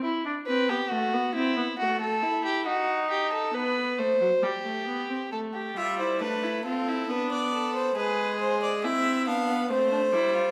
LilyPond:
<<
  \new Staff \with { instrumentName = "Violin" } { \time 3/4 \key a \minor \tempo 4 = 68 r2. | r2. | r8 e''16 c''16 b'8 a'8 b'16 d''8 c''16 | b'8 c''16 d''16 e''8 eis''8 c''4 | }
  \new Staff \with { instrumentName = "Violin" } { \time 3/4 \key a \minor r8 b'16 g'16 fis'8 e'8 fis'16 a'8 g'16 | fis'8 g'16 a'16 b'8 bis'8 g'4 | a'16 g'16 f'16 e'16 d'16 e'16 f'16 e'16 d'8 a'8 | gis'4 e'8 d'16 b16 c'16 d'16 e'16 f'16 | }
  \new Staff \with { instrumentName = "Viola" } { \time 3/4 \key a \minor e'16 d'16 c'16 b16 a16 b16 c'16 b16 a8 e'8 | dis'4 b8 a16 fis16 g16 a16 b16 c'16 | a8 g8 a8 c'8 b4 | gis4 c'8 b8 a8 g8 | }
>>